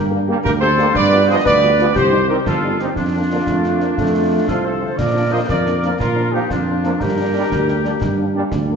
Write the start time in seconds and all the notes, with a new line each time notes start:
Already playing: G2 G4 A#4
0.10 A#3 D4 G4
0.28 G3 A#3 D4 G4
0.44 D2 G4 A#4, concert bass drum, snare
0.60 A#3 D4 G4 A4 C5
0.77 G3 A#3 D4 G4, snare
0.94 G2 B4 D5, concert bass drum, snare, crash
1.11 G3 B3 F4
1.28 F3 G3 B3 F4 C5 D#5
1.44 D2 B4 D5, concert bass drum, snare
1.62 G3 B3 F4, snare
1.79 F3 G3 B3 F4, snare
1.95 C2 G4 C5, concert bass drum, snare
2.12 G3 C4 D#4
2.28 D#3 G3 C4 D#4 G4 A#4
2.45 G1 F4 A4, concert bass drum, snare
2.62 G3 C4 D#4
2.79 D#3 G3 C4 D#4 G4, snare
2.95 F2 D4 F4, concert bass drum, snare
3.14 F3 A#3 D4
3.31 D3 F3 A#3 D4
3.46 F2 A3, concert bass drum, snare
3.64 F3 A#3 D4, snare
3.79 F3 A#3 D4, snare
3.96 F2 A3, concert bass drum, snare
4.14 F3 A3 C4
4.31 F3 A3 C4
4.47 C2 F3 F4 A4, concert bass drum, snare
4.63 F3 A3 C4 A4 C5
4.81 D3 F3 A3 C4
4.97 A#2 A#4 D5, concert bass drum, snare, crash
5.14 F3 A#3 D4
5.31 F3 A#3 D4 C5 D#5
5.48 F2 A#4 D5, concert bass drum, snare
5.64 F3 A#3 D4, snare
5.82 F3 A#3 D4, snare
5.99 A#2 F4 A#4, concert bass drum, snare
6.15 F3 A#3 D4
6.32 F3 A#3 D4 D#4 G4
6.50 F2 D4 F4, concert bass drum, snare
6.66 F3 A#3 D4
6.83 F3 A#3 D4, snare
6.99 G2 G4 A#4, concert bass drum, snare
7.17 G3 A#3 D4
7.33 G3 A#3 D4
7.50 D2, concert bass drum, snare
7.66 G3 A#3 D4, snare
7.83 G3 A#3 D4, snare
8.01 G2, concert bass drum, snare
8.17 G3 A#3 D4
8.34 G3 A#3 D4
8.51 D2, concert bass drum, snare
8.68 G3 A#3 D4